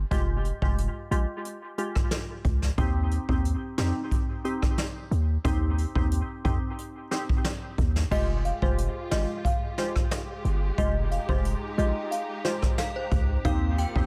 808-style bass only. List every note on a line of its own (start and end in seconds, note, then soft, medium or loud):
0.11 0.51 F1 loud
0.62 0.88 F1 loud
1.11 1.25 A#1 medium
2.45 2.71 C#2 medium
2.78 3.18 D#2 loud
3.29 3.55 D#2 loud
3.78 3.92 F2 loud
5.11 5.38 D#2 medium
5.45 5.85 D#2 loud
5.96 6.22 D#2 loud
6.45 6.59 F2 medium
7.78 8.04 D#2 medium
8.12 8.52 F1 loud
8.62 8.88 F1 loud
9.11 9.25 G#1 loud
10.45 10.71 G1 medium
10.78 11.18 F1 loud
11.29 11.55 F1 loud
11.78 11.92 A#1 medium
13.12 13.38 C#2 medium
13.45 13.85 D#2 loud
13.96 14.06 D#2 loud